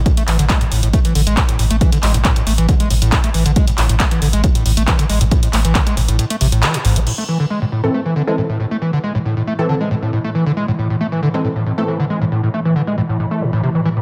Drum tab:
CC |----------------|----------------|----------------|----------------|
HH |xxoxxxoxxxoxxxox|xxoxxxoxxxoxxxox|xxoxxxoxxxoxxxox|xxoxxxoxxxoxxxox|
CP |--x-x-------x---|--x-x-------x---|--x-x-------x---|--x-x-------x---|
BD |o---o---o---o---|o---o---o---o---|o---o---o---o---|o---o-----------|

CC |x---------------|----------------|----------------|----------------|
HH |----------------|----------------|----------------|----------------|
CP |----------------|----------------|----------------|----------------|
BD |----------------|----------------|----------------|----------------|